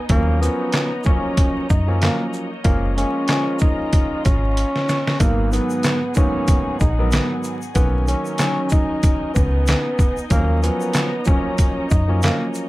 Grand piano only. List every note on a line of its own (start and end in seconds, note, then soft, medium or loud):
0.09 0.39 F3 loud
0.09 0.39 F#3 medium
0.09 0.39 A#3 medium
0.09 0.40 C#4 loud
0.41 0.87 F3 medium
0.41 0.87 F#3 medium
0.41 0.88 C#4 loud
0.41 0.87 A#4 medium
1.04 1.64 F3 loud
1.04 1.64 F#3 medium
1.04 1.65 A#3 medium
1.04 1.65 C#4 loud
1.87 2.45 F3 loud
1.87 2.45 F#3 medium
1.87 2.46 A#3 medium
1.87 2.46 C#4 loud
2.64 2.94 F3 loud
2.64 2.94 G#3 medium
2.64 2.95 A#3 medium
2.64 2.95 C#4 loud
2.96 3.26 F3 medium
2.96 3.27 G#3 medium
2.96 3.27 A#3 medium
2.96 3.27 C#4 loud
3.28 4.90 F3 loud
3.28 4.90 G#3 medium
3.28 4.91 A#3 medium
3.28 4.91 C#4 loud
5.19 5.50 G#2 loud
5.19 5.50 D#3 medium
5.19 5.50 F#3 medium
5.19 5.50 A#3 medium
5.19 5.50 B3 loud
5.51 5.98 G#2 loud
5.51 5.98 D#3 medium
5.51 5.98 F#3 medium
5.51 5.98 B3 loud
5.51 5.98 A#4 medium
6.15 6.75 G#2 loud
6.15 6.75 D#3 medium
6.15 6.75 F#3 medium
6.15 6.76 A#3 medium
6.15 6.76 B3 loud
6.98 7.56 G#2 medium
6.98 7.56 D#3 medium
6.98 7.56 F#3 medium
6.98 7.57 B3 loud
6.98 7.57 A#4 medium
7.75 8.05 D#3 loud
7.75 8.05 F#3 medium
7.75 8.05 A#3 medium
7.75 8.06 C#4 loud
8.06 8.37 D#3 medium
8.06 8.37 F#3 medium
8.06 8.37 A#3 medium
8.06 8.38 C#4 loud
8.39 10.01 D#3 loud
8.39 10.01 F#3 medium
8.39 10.02 C#4 loud
8.39 10.02 A#4 medium
10.30 10.60 F3 loud
10.30 10.60 F#3 medium
10.30 10.61 A#3 medium
10.30 10.61 C#4 loud
10.62 11.08 F3 medium
10.62 11.08 F#3 medium
10.62 11.09 C#4 loud
10.62 11.09 A#4 medium
11.25 11.85 F3 medium
11.25 11.86 F#3 medium
11.25 11.86 A#3 medium
11.25 11.86 C#4 loud
12.08 12.66 F3 loud
12.08 12.66 F#3 medium
12.08 12.67 A#3 medium
12.08 12.67 C#4 loud